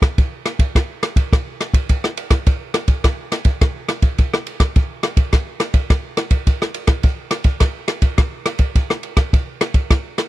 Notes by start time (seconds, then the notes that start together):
0.02 kick, cross-stick, ride
0.18 kick, ride
0.46 cross-stick, ride
0.59 kick, ride
0.75 kick, cross-stick, ride
1.03 cross-stick, ride
1.16 kick, ride
1.33 kick, cross-stick, ride
1.61 cross-stick, ride
1.74 kick, ride
1.89 kick, ride
2.04 cross-stick
2.17 ride
2.30 kick, cross-stick, ride
2.46 kick, ride
2.74 cross-stick, ride
2.88 kick, ride
3.04 kick, cross-stick, ride
3.32 cross-stick, ride
3.45 kick, ride
3.61 kick, cross-stick, ride
3.89 cross-stick, ride
4.02 kick, ride
4.18 kick, ride
4.34 cross-stick
4.47 ride
4.60 kick, cross-stick, ride
4.76 kick, ride
5.03 cross-stick, ride
5.17 kick, ride
5.33 kick, cross-stick, ride
5.60 cross-stick, ride
5.74 kick, ride
5.90 kick, cross-stick, ride
6.17 cross-stick, ride
6.31 kick, ride
6.47 kick, ride
6.62 cross-stick
6.74 ride
6.87 kick, cross-stick, ride
7.03 kick, ride
7.31 cross-stick, ride
7.44 kick, ride
7.60 kick, cross-stick, ride
7.88 cross-stick, ride
8.02 kick, ride
8.18 kick, cross-stick, ride
8.46 cross-stick, ride
8.58 kick, ride
8.75 kick, ride
8.90 cross-stick
9.03 ride
9.17 kick, cross-stick, ride
9.33 kick, ride
9.61 cross-stick, ride
9.74 kick, ride
9.90 kick, cross-stick, ride
10.18 cross-stick, ride